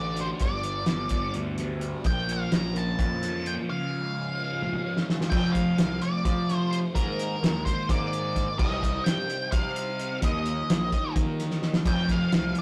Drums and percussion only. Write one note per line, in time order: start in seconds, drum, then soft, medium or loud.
0.17 closed hi-hat medium
0.40 kick loud
0.40 closed hi-hat medium
0.63 closed hi-hat medium
0.86 snare medium
0.86 closed hi-hat medium
1.09 kick medium
1.09 closed hi-hat medium
1.34 closed hi-hat medium
1.58 snare soft
1.58 closed hi-hat medium
1.81 closed hi-hat medium
2.04 kick loud
2.04 closed hi-hat medium
2.29 closed hi-hat medium
2.52 snare loud
2.52 closed hi-hat medium
2.76 closed hi-hat medium
2.99 kick loud
2.99 closed hi-hat medium
3.23 snare soft
3.23 closed hi-hat medium
3.46 closed hi-hat medium
4.62 high tom medium
4.73 high tom soft
4.97 snare medium
5.10 snare medium
5.21 snare medium
5.32 kick loud
5.32 crash loud
5.55 kick medium
5.55 closed hi-hat medium
5.78 snare loud
5.78 closed hi-hat medium
6.02 closed hi-hat medium
6.25 kick loud
6.25 closed hi-hat medium
6.49 snare soft
6.49 closed hi-hat medium
6.73 closed hi-hat medium
6.96 kick loud
6.96 closed hi-hat loud
7.19 closed hi-hat medium
7.44 snare loud
7.44 closed hi-hat medium
7.66 kick medium
7.66 snare soft
7.66 closed hi-hat medium
7.89 kick loud
7.89 snare soft
7.89 closed hi-hat loud
8.13 closed hi-hat medium
8.36 kick medium
8.36 snare soft
8.36 closed hi-hat medium
8.59 kick loud
8.59 crash loud
8.83 kick medium
8.83 closed hi-hat medium
9.06 snare loud
9.06 closed hi-hat loud
9.29 closed hi-hat medium
9.52 kick loud
9.52 closed hi-hat medium
9.76 closed hi-hat medium
9.99 closed hi-hat medium
10.22 kick loud
10.22 closed hi-hat loud
10.46 closed hi-hat medium
10.70 snare loud
10.70 closed hi-hat loud
10.92 kick medium
10.92 closed hi-hat medium
11.16 kick loud
11.16 closed hi-hat loud
11.40 snare soft
11.40 closed hi-hat medium
11.51 snare medium
11.62 snare medium
11.74 snare loud
11.85 kick loud
11.85 closed hi-hat medium
11.85 crash medium
12.09 kick medium
12.09 closed hi-hat medium
12.32 snare loud
12.32 closed hi-hat medium
12.55 closed hi-hat medium